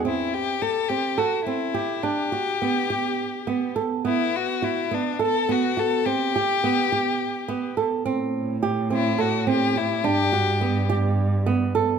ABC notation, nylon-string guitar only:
X:1
M:7/8
L:1/8
Q:1/4=105
K:Ador
V:1 name="Nylon-string guitar"
C2 G C A C G | D F B, G2 B, A | B,2 F B, A B, F | C G B, G2 B, A |
C2 G C A C G | D F B, G2 B, A |]